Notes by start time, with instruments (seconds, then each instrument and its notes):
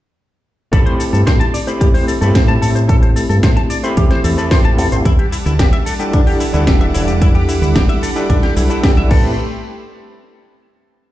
0.72 fingered electric bass A1, tine electric piano A3 C4 E4 G4 B5, clean electric guitar A4, kick, closed hi-hat, shaker
0.86 clean electric guitar C5, closed hi-hat
0.99 clean electric guitar A4, open hi-hat, shaker
1.13 fingered electric bass G2, clean electric guitar A4, shaker
1.27 fingered electric bass A2, clean electric guitar C5, kick, snare, closed hi-hat, shaker
1.40 clean electric guitar A5, closed hi-hat
1.54 clean electric guitar D5, open hi-hat, shaker
1.67 tine electric piano A3 C4 E4 G4 B5, clean electric guitar C5, closed hi-hat, shaker
1.80 clean electric guitar G4, kick, closed hi-hat, shaker
1.94 clean electric guitar C5, open hi-hat
2.08 clean electric guitar A4, open hi-hat, shaker
2.21 fingered electric bass G2, tine electric piano A3 C4 E4 G4 B5, clean electric guitar A4, closed hi-hat, shaker
2.35 fingered electric bass A2, clean electric guitar C5, kick, snare, closed hi-hat, shaker
2.48 clean electric guitar A5, closed hi-hat
2.62 fingered electric bass A2, clean electric guitar A4, open hi-hat, shaker
2.75 clean electric guitar C5, closed hi-hat, shaker
2.89 clean electric guitar A4, kick, closed hi-hat, shaker
3.02 fingered electric bass A1, clean electric guitar C5, closed hi-hat
3.16 clean electric guitar A4, open hi-hat, shaker
3.29 fingered electric bass G2, clean electric guitar A4, shaker
3.43 fingered electric bass A2, clean electric guitar C5, kick, snare, closed hi-hat, shaker
3.57 clean electric guitar A5, closed hi-hat
3.70 clean electric guitar D5, open hi-hat, shaker
3.83 tine electric piano A3 C4 E4 G4 B5, clean electric guitar C5, closed hi-hat, shaker
3.97 fingered electric bass E2, clean electric guitar G4, kick, closed hi-hat, shaker
4.11 clean electric guitar C5, snare, closed hi-hat
4.24 fingered electric bass E2, clean electric guitar A4, open hi-hat, shaker
4.37 tine electric piano A3 C4 E4 G4 B5, clean electric guitar A4, closed hi-hat, shaker
4.51 clean electric guitar C5, kick, snare, open hi-hat, shaker
4.65 fingered electric bass A1, clean electric guitar A5, closed hi-hat
4.78 fingered electric bass E2, clean electric guitar A4, open hi-hat, shaker
4.92 fingered electric bass A1, clean electric guitar C5, closed hi-hat, shaker
5.05 fingered electric bass E2, analog synth pad G3 F#5 A5 D6, clean electric guitar E4, kick, closed hi-hat, shaker
5.19 clean electric guitar G4, closed hi-hat
5.32 clean electric guitar E4, open hi-hat, shaker
5.46 fingered electric bass D2, clean electric guitar E4, shaker
5.59 fingered electric bass E1, clean electric guitar G4, kick, snare, closed hi-hat, shaker
5.73 clean electric guitar E5, closed hi-hat
5.86 clean electric guitar A4, open hi-hat, shaker
5.99 tine electric piano G3 D4 E4 A4 F#5, clean electric guitar G4, closed hi-hat, shaker
6.13 clean electric guitar D4, kick, closed hi-hat, shaker
6.27 clean electric guitar G4, open hi-hat
6.40 clean electric guitar E4, open hi-hat, shaker
6.53 fingered electric bass D2, tine electric piano G3 D4 E4 A4 F#5, clean electric guitar E4, closed hi-hat, shaker
6.67 fingered electric bass E1, clean electric guitar G4, kick, snare, closed hi-hat, shaker
6.81 clean electric guitar E5, closed hi-hat
6.94 fingered electric bass E1, clean electric guitar E4, open hi-hat, shaker
7.08 clean electric guitar G4, closed hi-hat, shaker
7.21 clean electric guitar E4, analog synth pad B5, kick, closed hi-hat, shaker
7.35 fingered electric bass E2, clean electric guitar G4, closed hi-hat
7.49 clean electric guitar E4, open hi-hat, shaker
7.62 fingered electric bass D2, clean electric guitar E4, shaker
7.76 fingered electric bass E1, clean electric guitar G4, kick, snare, closed hi-hat, shaker
7.89 clean electric guitar E5, closed hi-hat
8.03 clean electric guitar A4, open hi-hat, shaker
8.16 tine electric piano G3 D4 E4 A4 F#5, clean electric guitar G4, shaker
8.30 fingered electric bass B1, clean electric guitar D4, kick, closed hi-hat, shaker
8.43 clean electric guitar G4, snare, closed hi-hat
8.56 fingered electric bass B1, clean electric guitar E4, open hi-hat, shaker
8.69 tine electric piano G3 D4 E4 A4 F#5, clean electric guitar E4, closed hi-hat, shaker
8.83 clean electric guitar G4, kick, snare, open hi-hat, shaker
8.97 fingered electric bass B1, clean electric guitar E5, closed hi-hat
9.09 fingered electric bass A1, tine electric piano A3 C4 E4 G4 B4, analog synth pad A3 G4 B5 C6, clean electric guitar A4, kick, crash